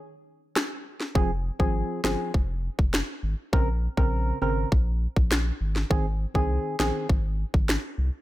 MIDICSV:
0, 0, Header, 1, 4, 480
1, 0, Start_track
1, 0, Key_signature, -4, "minor"
1, 0, Tempo, 594059
1, 932, Time_signature, 4, 2, 24, 8
1, 6639, End_track
2, 0, Start_track
2, 0, Title_t, "Synth stab"
2, 0, Program_c, 0, 62
2, 929, Note_on_c, 0, 53, 93
2, 932, Note_on_c, 0, 60, 82
2, 935, Note_on_c, 0, 68, 100
2, 1055, Note_off_c, 0, 53, 0
2, 1056, Note_off_c, 0, 60, 0
2, 1058, Note_off_c, 0, 68, 0
2, 1287, Note_on_c, 0, 53, 80
2, 1290, Note_on_c, 0, 60, 70
2, 1292, Note_on_c, 0, 68, 85
2, 1621, Note_off_c, 0, 53, 0
2, 1623, Note_off_c, 0, 60, 0
2, 1624, Note_off_c, 0, 68, 0
2, 1648, Note_on_c, 0, 53, 80
2, 1651, Note_on_c, 0, 60, 68
2, 1652, Note_on_c, 0, 68, 82
2, 1871, Note_off_c, 0, 53, 0
2, 1872, Note_off_c, 0, 60, 0
2, 1873, Note_off_c, 0, 68, 0
2, 2849, Note_on_c, 0, 49, 93
2, 2852, Note_on_c, 0, 60, 80
2, 2855, Note_on_c, 0, 70, 102
2, 2975, Note_off_c, 0, 49, 0
2, 2976, Note_off_c, 0, 60, 0
2, 2978, Note_off_c, 0, 70, 0
2, 3210, Note_on_c, 0, 49, 80
2, 3212, Note_on_c, 0, 60, 73
2, 3213, Note_on_c, 0, 70, 89
2, 3543, Note_off_c, 0, 49, 0
2, 3543, Note_off_c, 0, 60, 0
2, 3544, Note_off_c, 0, 70, 0
2, 3568, Note_on_c, 0, 49, 76
2, 3570, Note_on_c, 0, 60, 70
2, 3573, Note_on_c, 0, 70, 83
2, 3791, Note_off_c, 0, 49, 0
2, 3792, Note_off_c, 0, 60, 0
2, 3793, Note_off_c, 0, 70, 0
2, 4768, Note_on_c, 0, 51, 90
2, 4772, Note_on_c, 0, 60, 85
2, 4773, Note_on_c, 0, 68, 99
2, 4894, Note_off_c, 0, 51, 0
2, 4896, Note_off_c, 0, 60, 0
2, 4897, Note_off_c, 0, 68, 0
2, 5126, Note_on_c, 0, 51, 77
2, 5130, Note_on_c, 0, 60, 74
2, 5132, Note_on_c, 0, 68, 90
2, 5460, Note_off_c, 0, 51, 0
2, 5462, Note_off_c, 0, 60, 0
2, 5463, Note_off_c, 0, 68, 0
2, 5490, Note_on_c, 0, 51, 75
2, 5491, Note_on_c, 0, 60, 71
2, 5494, Note_on_c, 0, 68, 85
2, 5712, Note_off_c, 0, 51, 0
2, 5712, Note_off_c, 0, 60, 0
2, 5714, Note_off_c, 0, 68, 0
2, 6639, End_track
3, 0, Start_track
3, 0, Title_t, "Analog synth bass"
3, 0, Program_c, 1, 38
3, 931, Note_on_c, 1, 29, 109
3, 1215, Note_off_c, 1, 29, 0
3, 1290, Note_on_c, 1, 32, 93
3, 1480, Note_off_c, 1, 32, 0
3, 1651, Note_on_c, 1, 31, 93
3, 1746, Note_off_c, 1, 31, 0
3, 1893, Note_on_c, 1, 29, 101
3, 2176, Note_off_c, 1, 29, 0
3, 2252, Note_on_c, 1, 29, 86
3, 2441, Note_off_c, 1, 29, 0
3, 2611, Note_on_c, 1, 32, 87
3, 2706, Note_off_c, 1, 32, 0
3, 2852, Note_on_c, 1, 34, 108
3, 3136, Note_off_c, 1, 34, 0
3, 3211, Note_on_c, 1, 34, 101
3, 3495, Note_off_c, 1, 34, 0
3, 3572, Note_on_c, 1, 32, 93
3, 3761, Note_off_c, 1, 32, 0
3, 3814, Note_on_c, 1, 34, 109
3, 4097, Note_off_c, 1, 34, 0
3, 4173, Note_on_c, 1, 34, 89
3, 4456, Note_off_c, 1, 34, 0
3, 4532, Note_on_c, 1, 32, 91
3, 4721, Note_off_c, 1, 32, 0
3, 4772, Note_on_c, 1, 32, 111
3, 5056, Note_off_c, 1, 32, 0
3, 5131, Note_on_c, 1, 36, 93
3, 5320, Note_off_c, 1, 36, 0
3, 5492, Note_on_c, 1, 34, 84
3, 5587, Note_off_c, 1, 34, 0
3, 5732, Note_on_c, 1, 32, 99
3, 6016, Note_off_c, 1, 32, 0
3, 6092, Note_on_c, 1, 32, 88
3, 6281, Note_off_c, 1, 32, 0
3, 6449, Note_on_c, 1, 36, 92
3, 6545, Note_off_c, 1, 36, 0
3, 6639, End_track
4, 0, Start_track
4, 0, Title_t, "Drums"
4, 454, Note_on_c, 9, 37, 100
4, 454, Note_on_c, 9, 38, 116
4, 461, Note_on_c, 9, 26, 97
4, 535, Note_off_c, 9, 37, 0
4, 535, Note_off_c, 9, 38, 0
4, 542, Note_off_c, 9, 26, 0
4, 811, Note_on_c, 9, 38, 60
4, 892, Note_off_c, 9, 38, 0
4, 932, Note_on_c, 9, 36, 102
4, 1012, Note_off_c, 9, 36, 0
4, 1291, Note_on_c, 9, 36, 78
4, 1371, Note_off_c, 9, 36, 0
4, 1653, Note_on_c, 9, 38, 107
4, 1660, Note_on_c, 9, 26, 84
4, 1734, Note_off_c, 9, 38, 0
4, 1741, Note_off_c, 9, 26, 0
4, 1893, Note_on_c, 9, 36, 89
4, 1973, Note_off_c, 9, 36, 0
4, 2252, Note_on_c, 9, 36, 92
4, 2333, Note_off_c, 9, 36, 0
4, 2373, Note_on_c, 9, 38, 122
4, 2380, Note_on_c, 9, 26, 96
4, 2454, Note_off_c, 9, 38, 0
4, 2461, Note_off_c, 9, 26, 0
4, 2852, Note_on_c, 9, 36, 110
4, 2933, Note_off_c, 9, 36, 0
4, 3211, Note_on_c, 9, 36, 79
4, 3292, Note_off_c, 9, 36, 0
4, 3813, Note_on_c, 9, 36, 93
4, 3894, Note_off_c, 9, 36, 0
4, 4173, Note_on_c, 9, 36, 90
4, 4254, Note_off_c, 9, 36, 0
4, 4294, Note_on_c, 9, 38, 122
4, 4301, Note_on_c, 9, 26, 96
4, 4375, Note_off_c, 9, 38, 0
4, 4382, Note_off_c, 9, 26, 0
4, 4652, Note_on_c, 9, 38, 61
4, 4733, Note_off_c, 9, 38, 0
4, 4772, Note_on_c, 9, 36, 109
4, 4853, Note_off_c, 9, 36, 0
4, 5131, Note_on_c, 9, 36, 77
4, 5212, Note_off_c, 9, 36, 0
4, 5493, Note_on_c, 9, 38, 107
4, 5500, Note_on_c, 9, 26, 88
4, 5574, Note_off_c, 9, 38, 0
4, 5580, Note_off_c, 9, 26, 0
4, 5732, Note_on_c, 9, 36, 94
4, 5813, Note_off_c, 9, 36, 0
4, 6092, Note_on_c, 9, 36, 99
4, 6173, Note_off_c, 9, 36, 0
4, 6214, Note_on_c, 9, 38, 125
4, 6221, Note_on_c, 9, 26, 99
4, 6295, Note_off_c, 9, 38, 0
4, 6302, Note_off_c, 9, 26, 0
4, 6639, End_track
0, 0, End_of_file